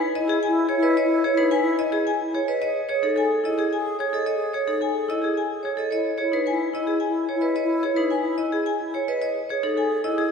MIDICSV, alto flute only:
0, 0, Header, 1, 2, 480
1, 0, Start_track
1, 0, Key_signature, 4, "minor"
1, 0, Tempo, 550459
1, 839, Time_signature, 3, 2, 24, 8
1, 8996, End_track
2, 0, Start_track
2, 0, Title_t, "Alto flute"
2, 0, Program_c, 0, 73
2, 159, Note_on_c, 0, 64, 71
2, 332, Note_off_c, 0, 64, 0
2, 407, Note_on_c, 0, 64, 85
2, 581, Note_off_c, 0, 64, 0
2, 665, Note_on_c, 0, 64, 82
2, 836, Note_off_c, 0, 64, 0
2, 901, Note_on_c, 0, 64, 80
2, 1078, Note_off_c, 0, 64, 0
2, 1153, Note_on_c, 0, 64, 71
2, 1329, Note_off_c, 0, 64, 0
2, 1406, Note_on_c, 0, 64, 65
2, 1582, Note_off_c, 0, 64, 0
2, 1653, Note_on_c, 0, 64, 49
2, 1830, Note_off_c, 0, 64, 0
2, 1907, Note_on_c, 0, 64, 41
2, 2083, Note_off_c, 0, 64, 0
2, 2287, Note_on_c, 0, 68, 40
2, 2459, Note_off_c, 0, 68, 0
2, 2523, Note_on_c, 0, 68, 52
2, 2701, Note_off_c, 0, 68, 0
2, 2776, Note_on_c, 0, 68, 58
2, 2953, Note_off_c, 0, 68, 0
2, 3029, Note_on_c, 0, 68, 60
2, 3205, Note_off_c, 0, 68, 0
2, 3281, Note_on_c, 0, 68, 73
2, 3457, Note_off_c, 0, 68, 0
2, 3539, Note_on_c, 0, 68, 67
2, 3712, Note_off_c, 0, 68, 0
2, 3785, Note_on_c, 0, 68, 62
2, 3960, Note_off_c, 0, 68, 0
2, 4035, Note_on_c, 0, 68, 63
2, 4210, Note_off_c, 0, 68, 0
2, 4290, Note_on_c, 0, 68, 52
2, 4464, Note_off_c, 0, 68, 0
2, 4537, Note_on_c, 0, 68, 46
2, 4712, Note_off_c, 0, 68, 0
2, 4798, Note_on_c, 0, 68, 35
2, 4970, Note_off_c, 0, 68, 0
2, 5159, Note_on_c, 0, 64, 32
2, 5335, Note_off_c, 0, 64, 0
2, 5403, Note_on_c, 0, 64, 43
2, 5581, Note_off_c, 0, 64, 0
2, 5654, Note_on_c, 0, 64, 51
2, 5832, Note_off_c, 0, 64, 0
2, 5915, Note_on_c, 0, 64, 58
2, 6089, Note_off_c, 0, 64, 0
2, 6159, Note_on_c, 0, 64, 62
2, 6336, Note_off_c, 0, 64, 0
2, 6403, Note_on_c, 0, 64, 72
2, 6582, Note_off_c, 0, 64, 0
2, 6653, Note_on_c, 0, 64, 61
2, 6833, Note_off_c, 0, 64, 0
2, 6908, Note_on_c, 0, 64, 65
2, 7086, Note_off_c, 0, 64, 0
2, 7160, Note_on_c, 0, 64, 52
2, 7338, Note_off_c, 0, 64, 0
2, 7411, Note_on_c, 0, 64, 46
2, 7589, Note_off_c, 0, 64, 0
2, 7657, Note_on_c, 0, 64, 36
2, 7836, Note_off_c, 0, 64, 0
2, 8035, Note_on_c, 0, 68, 36
2, 8212, Note_off_c, 0, 68, 0
2, 8282, Note_on_c, 0, 68, 46
2, 8461, Note_off_c, 0, 68, 0
2, 8541, Note_on_c, 0, 68, 57
2, 8716, Note_off_c, 0, 68, 0
2, 8801, Note_on_c, 0, 68, 66
2, 8973, Note_off_c, 0, 68, 0
2, 8996, End_track
0, 0, End_of_file